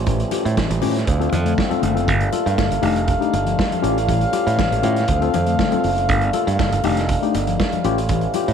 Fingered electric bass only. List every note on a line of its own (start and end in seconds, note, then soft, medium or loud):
0.00 0.23 A1 loud
0.45 0.55 A2 medium
0.70 0.80 A1 medium
0.82 1.03 A2 medium
1.08 1.28 D2 medium
1.32 1.53 F2 medium
1.83 2.08 F#1 medium
2.08 2.29 G1 loud
2.46 2.56 G2 medium
2.71 2.81 G1 medium
2.83 3.14 F1 loud
3.33 3.54 G1 medium
3.83 4.24 A1 loud
4.47 4.56 A2 medium
4.72 4.82 A1 medium
4.84 5.04 A2 medium
5.09 5.29 D2 medium
5.34 5.55 F2 medium
5.84 6.09 F#1 medium
6.09 6.30 G1 loud
6.47 6.57 G2 loud
6.73 6.82 G1 medium
6.84 7.16 F1 loud
7.35 7.55 G1 medium
7.85 8.26 A1 medium
8.48 8.53 A2 medium